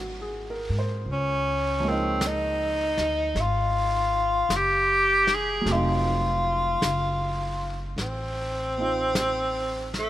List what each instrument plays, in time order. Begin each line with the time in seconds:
Already playing: upright bass G#1, upright piano F#3 A#3 C4 F4 F#4
0.22 upright piano G#4
0.50 upright piano A#4
0.70 upright bass G#2
0.79 upright piano C5
1.05 upright bass C#2, brush sweep
1.12 tenor saxophone C#4
1.80 upright piano F3 G#3
1.87 upright piano A#3 D#4, tenor saxophone C4
2.21 brush sweep, snare, hi-hat pedal
2.26 tenor saxophone D#4
2.97 upright bass D2, snare
3.35 upright bass G#1, brush sweep, snare
3.41 tenor saxophone F4
4.49 upright bass F#1, brush sweep, snare, hi-hat pedal
4.56 tenor saxophone G4
5.27 snare
5.34 tenor saxophone G#4
5.61 upright piano F#3
5.65 upright bass F1, upright piano A3, brush sweep, snare
5.70 upright piano C4 D#4, tenor saxophone F4
6.82 upright bass F#1, brush sweep, snare, hi-hat pedal
7.96 upright bass A1, brush sweep, snare
8.01 tenor saxophone C4
8.78 upright piano C4 D#4 F4
9.15 brush sweep, snare, hi-hat pedal
9.94 snare
9.99 tenor saxophone A3